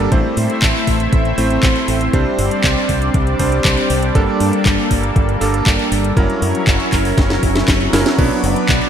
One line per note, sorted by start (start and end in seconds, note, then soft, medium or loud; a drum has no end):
0.12 0.21 A1 loud
0.12 1.35 A3 medium
0.12 2.11 A3 medium
0.12 1.35 C4 medium
0.12 4.11 C4 medium
0.12 1.35 E4 medium
0.12 2.11 E4 medium
0.12 1.35 C5 medium
0.12 4.11 C5 medium
0.12 2.11 E5 medium
0.12 kick loud
0.12 closed hi-hat medium
0.37 0.47 A2 medium
0.37 open hi-hat loud
0.50 closed hi-hat soft
0.62 0.72 A1 medium
0.62 kick loud
0.62 clap loud
0.62 closed hi-hat medium
0.87 1.07 A1 medium
0.87 kick medium
0.87 open hi-hat loud
1.00 closed hi-hat medium
1.13 1.32 A1 loud
1.13 kick loud
1.13 closed hi-hat medium
1.25 closed hi-hat soft
1.38 1.57 A1 loud
1.38 2.10 A3 medium
1.38 2.10 C4 medium
1.38 2.10 E4 medium
1.38 2.10 C5 medium
1.38 open hi-hat loud
1.50 closed hi-hat soft
1.63 1.73 A1 medium
1.63 kick loud
1.63 clap loud
1.63 closed hi-hat medium
1.76 closed hi-hat soft
1.88 2.08 A1 medium
1.88 open hi-hat loud
2.01 closed hi-hat soft
2.13 2.23 C2 loud
2.13 6.13 G3 medium
2.13 3.36 G3 medium
2.13 3.36 C4 medium
2.13 6.13 D4 medium
2.13 3.36 D4 medium
2.13 3.36 C5 medium
2.13 6.13 D5 medium
2.13 kick loud
2.13 closed hi-hat medium
2.39 2.48 G1 loud
2.39 open hi-hat loud
2.51 closed hi-hat medium
2.64 2.74 C2 medium
2.64 kick loud
2.64 clap loud
2.64 closed hi-hat medium
2.89 3.08 C2 medium
2.89 kick medium
2.89 open hi-hat loud
3.02 closed hi-hat medium
3.14 3.34 C2 loud
3.14 kick loud
3.14 closed hi-hat medium
3.27 closed hi-hat soft
3.39 3.59 C2 loud
3.39 4.12 G3 medium
3.39 4.12 C4 medium
3.39 4.12 D4 medium
3.39 4.12 C5 medium
3.39 kick medium
3.39 open hi-hat loud
3.52 closed hi-hat medium
3.65 3.74 C2 medium
3.65 kick loud
3.65 clap loud
3.65 closed hi-hat medium
3.77 closed hi-hat soft
3.90 4.09 C2 medium
3.90 open hi-hat loud
4.03 closed hi-hat medium
4.15 4.25 G1 loud
4.15 5.38 G3 medium
4.15 5.38 A#3 medium
4.15 6.15 A#3 medium
4.15 5.38 D4 medium
4.15 5.38 A4 loud
4.15 6.15 A4 medium
4.15 kick loud
4.15 closed hi-hat medium
4.40 4.50 G2 medium
4.40 open hi-hat loud
4.53 closed hi-hat medium
4.66 4.75 G1 medium
4.66 kick loud
4.66 clap loud
4.66 closed hi-hat medium
4.91 5.10 G1 medium
4.91 kick medium
4.91 open hi-hat loud
5.03 closed hi-hat medium
5.16 5.35 G1 loud
5.16 kick loud
5.16 closed hi-hat medium
5.29 closed hi-hat soft
5.41 5.61 G1 medium
5.41 6.14 G3 medium
5.41 6.14 A#3 medium
5.41 6.14 D4 medium
5.41 6.14 A4 medium
5.41 open hi-hat loud
5.54 closed hi-hat medium
5.66 5.76 G1 medium
5.66 kick loud
5.66 clap loud
5.66 closed hi-hat medium
5.79 closed hi-hat soft
5.92 6.11 G1 medium
5.92 open hi-hat loud
6.04 closed hi-hat medium
6.17 6.26 F#1 loud
6.17 7.40 F#3 medium
6.17 8.17 F#3 medium
6.17 7.40 C#4 medium
6.17 8.17 C#4 medium
6.17 7.40 E4 medium
6.17 8.17 E4 medium
6.17 7.40 A#4 loud
6.17 8.17 A#4 medium
6.17 8.17 C#5 medium
6.17 kick loud
6.17 closed hi-hat medium
6.30 closed hi-hat soft
6.42 6.52 F#2 loud
6.42 open hi-hat loud
6.55 closed hi-hat medium
6.67 6.77 F#1 medium
6.67 kick loud
6.67 clap loud
6.67 closed hi-hat medium
6.80 closed hi-hat soft
6.92 7.12 F#1 medium
6.92 kick medium
6.92 clap medium
6.92 open hi-hat loud
7.05 open hi-hat medium
7.18 7.37 F#1 loud
7.18 kick loud
7.18 snare medium
7.18 closed hi-hat medium
7.30 snare medium
7.30 closed hi-hat soft
7.43 7.62 F#1 loud
7.43 kick medium
7.43 open hi-hat loud
7.55 snare medium
7.55 closed hi-hat medium
7.68 7.87 F#1 medium
7.68 kick loud
7.68 snare medium
7.68 clap loud
7.68 closed hi-hat medium
7.81 closed hi-hat soft
7.93 8.03 F#1 loud
7.93 8.15 F#3 loud
7.93 8.15 C#4 medium
7.93 8.15 E4 medium
7.93 8.15 A#4 loud
7.93 snare loud
7.93 open hi-hat loud
8.06 snare medium
8.06 closed hi-hat medium
8.18 8.28 B1 loud
8.18 8.89 F#3 medium
8.18 8.89 B3 medium
8.18 8.89 D4 medium
8.18 8.89 B4 loud
8.18 8.89 B4 medium
8.18 8.89 D5 medium
8.18 kick loud
8.18 closed hi-hat medium
8.18 crash loud
8.31 closed hi-hat soft
8.43 8.53 F#1 medium
8.43 open hi-hat loud
8.56 closed hi-hat medium
8.69 8.79 B1 medium
8.69 kick loud
8.69 clap loud
8.69 closed hi-hat medium
8.82 closed hi-hat soft